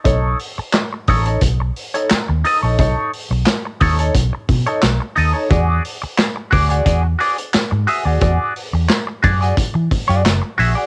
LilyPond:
<<
  \new Staff \with { instrumentName = "Clean electric guitar" } { \time 4/4 \key b \mixolydian \tempo 4 = 88 <dis' a' cis''>8 r4 <dis' a' cis''>16 <dis' a' cis''>16 r8. <dis' a' cis''>16 r8 <dis' a' dis''>16 <dis' a' cis''>16 | <dis' a' cis''>8 r4 <dis' a' cis''>16 <dis' a' cis''>16 r8. <dis' a' cis''>16 r8 <dis' a' dis''>16 <dis' a' cis''>16 | <fis' gis' d''>8 r4 <fis' gis' d''>16 <fis' gis' d''>16 <fis' gis' d''>16 r16 <fis' gis' d''>16 r8. <fis' gis' e''>16 <fis' gis' d''>16 | <fis' gis' d''>8 r4 <fis' gis' d''>16 <fis' gis' d''>16 r8. <fis' gis' d''>16 r8 <fis' gis' e''>16 <fis' gis' d''>16 | }
  \new Staff \with { instrumentName = "Fingered electric bass" } { \clef bass \time 4/4 \key b \mixolydian b,,8 r4 a,,8 b,,8 r8. dis,16 r16 ais,,16 | b,,16 r8 b,,16 r8 dis,8 b,,16 r16 b,16 r16 b,,16 r16 dis,16 r16 | e,8 r4 d,8 e,8 r8. gis,16 r16 dis,16 | e,16 r8 e,16 r8 fis,8 r16 e16 r16 fis,16 fis,,16 r16 ais,,16 r16 | }
  \new DrumStaff \with { instrumentName = "Drums" } \drummode { \time 4/4 <hh bd>8 hho8 <hc hh sn>8 <hho bd>16 hh16 <hh bd>8 hho16 hh16 <hc hh sn>8 hho8 | <hh bd>8 hho8 <hc hh sn>8 <hho bd>16 hh16 <hh bd>8 <hho bd>16 hh16 <hc hh sn>8 hho8 | <hh bd>8 hho8 <hc hh sn>8 <hho bd>16 hh16 <hh bd>8 hho16 hh16 <hc hh sn>8 hho8 | <hh bd>8 hho8 <hc hh sn>8 <hho bd>16 hh16 <hh bd>8 <hho bd>16 hh16 <hc hh sn>8 hho8 | }
>>